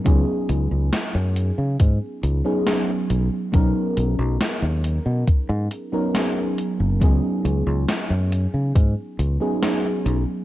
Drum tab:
HH |xxxxxxxx|xxxxxxxx|xxxxxxxx|
SD |--o---o-|--o---o-|--o---o-|
BD |o---o---|o---o---|o---o---|